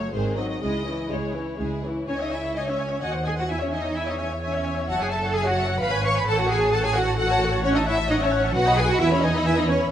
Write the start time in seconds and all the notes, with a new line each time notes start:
Already playing: F#3 A3 F#4 C#5
0.11 G#1 G#2 D#3 G#3 C5
0.15 C4 G#4
0.36 F#3 C4 D#4 F#4 D#5
0.50 D#5
0.60 C#2 C#3 G#3 E4 G#4 D#5
0.85 E3 C#4 E4
1.09 C#2 C#3 G#3 E4 G#4 C#5
1.33 E3 C#4 E4
1.58 C#2 C#3 G#3 E4 G#4
1.83 E3 C#4 E4
2.07 C#2 C#4 C#5 G#5
2.20 D#4 C#5 D#5 E5
2.31 E4 C#5 E5 G#5
2.44 C#5 E5
2.56 D#4 C#5 D#5 G#5
2.67 C#4 C#5 E5
2.78 C#5 G#5
2.90 C#5 E5
3.01 D#2 F#4 D#5 F#5 G#5
3.13 C5 F#5
3.25 G#4 D#5 G#5
3.37 C5 F#5
3.41 F#4
3.48 E2 E4 E5 G#5
3.60 C#4 C#5 E5
3.72 D#4 D#5 E5 G#5
3.84 C#5 E5
3.95 E4 E5 G#5
4.07 D#4 C#5 D#5 E5
4.18 C#4 C#5 E5 G#5
4.31 C#5 E5
4.42 C#4 C#5 E5 G#5
4.55 C#5 E5
4.66 E5 G#5
4.78 C#5 E5
4.89 F#1 F#4 E5 F#5 A5
5.00 G#4 C#5 F#5 G#5
5.11 A4 E5 A5
5.24 C#5 F#5
5.34 G#4 E5 G#5 A5
5.45 F#4 C#5 F#5
5.57 E5 A5
5.68 C#5 F#5
5.80 G#1 B4 F5 B5
5.92 C#5 G#5
6.04 B4 C#5 F5 C#6
6.15 B4 C#5 G#5 B5
6.26 A1 A4 F#5 A5
6.36 C#5 F#5 A5
6.40 F#4
6.48 G#4 A4 F#5 G#5
6.59 C#5 A5
6.72 A4 F#5 A5
6.84 G#4 C#5 G#5 A5
6.94 F#4 A4 F#5
7.05 C#5 A5
7.16 F#4 A4 F#5
7.29 C#5 A5
7.41 A4 F#5
7.52 C#5 A5
7.62 C#4 C#5 F#5
7.74 D#4 D#5 E5 A5
7.85 E4 C#5 E5 F#5
7.98 E5 A5
8.09 D#4 C#5 D#5 F#5
8.20 C#4 C#5 E5 A5
8.33 C#5 F#5
8.45 E5 A5
8.54 B1 F#4 B4 F#5
8.67 D#5 B5
8.77 G#4 B4 F#5 G#5
8.87 F#4 D#5 F#5
8.91 B5
9.00 E2 E4 B4 E5 G#5
9.12 C#4 C#5 E5 B5
9.22 D#4 B4 D#5 G#5
9.36 E5 B5
9.44 E4 B4 E5 G#5
9.56 D#4 D#5 E5 B5
9.67 C#4 B4 C#5 G#5
9.79 E5 B5